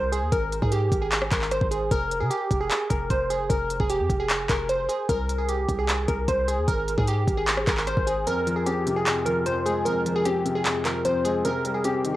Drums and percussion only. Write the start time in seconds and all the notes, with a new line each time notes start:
0.13 closed hi-hat
0.32 kick, closed hi-hat
0.52 closed hi-hat
0.62 kick
0.72 closed hi-hat
0.92 kick, closed hi-hat
1.12 clap, closed hi-hat
1.22 cross-stick
1.31 kick, clap, closed hi-hat
1.41 clap
1.51 cross-stick, closed hi-hat
1.61 kick
1.71 closed hi-hat
1.91 kick, closed hi-hat
2.11 closed hi-hat
2.31 closed hi-hat
2.51 kick, closed hi-hat
2.71 clap, closed hi-hat
2.90 kick, closed hi-hat
3.10 kick, closed hi-hat
3.30 closed hi-hat
3.50 kick, closed hi-hat
3.70 closed hi-hat
3.80 kick
3.90 closed hi-hat
4.10 kick, closed hi-hat
4.30 clap, closed hi-hat
4.49 kick, clap, closed hi-hat
4.69 closed hi-hat
4.89 closed hi-hat
5.09 kick, closed hi-hat
5.29 closed hi-hat
5.49 closed hi-hat
5.69 kick, closed hi-hat
5.89 clap, closed hi-hat
6.08 kick, closed hi-hat
6.28 kick, closed hi-hat
6.48 closed hi-hat
6.68 kick, closed hi-hat
6.88 closed hi-hat
6.98 kick
7.08 closed hi-hat
7.28 kick, closed hi-hat
7.48 clap, closed hi-hat
7.57 cross-stick
7.67 kick, clap, closed hi-hat
7.77 clap
7.87 cross-stick, closed hi-hat
7.97 kick
8.07 closed hi-hat
8.27 closed hi-hat
8.47 closed hi-hat
8.67 closed hi-hat
8.87 closed hi-hat
9.07 clap, closed hi-hat
9.26 closed hi-hat
9.46 closed hi-hat
9.66 closed hi-hat
9.86 closed hi-hat
10.06 closed hi-hat
10.25 closed hi-hat
10.46 closed hi-hat
10.65 clap, closed hi-hat
10.85 clap, closed hi-hat
11.05 closed hi-hat
11.25 closed hi-hat
11.45 closed hi-hat
11.65 closed hi-hat
11.84 closed hi-hat
12.05 closed hi-hat